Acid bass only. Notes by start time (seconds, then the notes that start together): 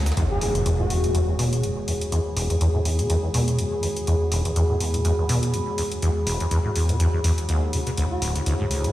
0.17 E2
0.41 E1
0.55 E2
0.66 E2
0.79 A2
0.90 E2
1.04 B2
1.15 E2
1.28 E2
1.39 B2
1.63 E2
1.88 E2
2.12 E2
2.37 E1
2.50 E2
2.61 E2
2.75 A2
2.85 E2
2.99 B2
3.10 E2
3.23 E2
3.34 B2
3.59 E2
3.83 E2
4.07 E2
4.32 E1
4.45 E2
4.56 E2
4.70 A2
4.81 E2
4.94 B2
5.05 E2
5.18 E2
5.29 B2
5.54 E2
5.78 E2
6.02 E2
6.27 E1
6.40 E2
6.51 E2
6.65 A2
6.76 E2
6.89 B2
7.00 E2
7.14 E2
7.24 E2
7.49 D#2
7.73 E3
7.87 B2
7.98 D2
8.22 D1
8.36 D2
8.46 D2
8.60 G#2
8.71 D2
8.84 A2